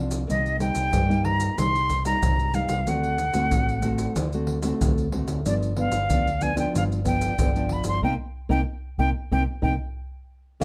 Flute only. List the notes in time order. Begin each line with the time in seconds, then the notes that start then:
0.30 D#5
0.60 G5
1.25 A#5
1.58 C6
2.06 A#5
2.55 F5
2.89 F#5
5.47 D5
5.79 F5
6.42 G#5
6.59 G5
6.77 F5
7.07 G5
7.72 B5
7.88 C6
8.04 G5
8.51 G5
8.99 G5
9.32 G5
9.63 G5